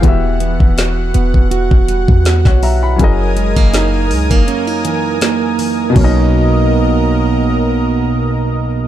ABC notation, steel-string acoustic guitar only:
X:1
M:4/4
L:1/16
Q:"Swing 16ths" 1/4=81
K:B
V:1 name="Steel-string acoustic guitar"
E,2 B,2 F2 B,2 F2 =G,2 B,2 G,2 | F,,2 G, A, D2 G, A, C D E,2 A,2 E,2 | [B,,F,A,D]16 |]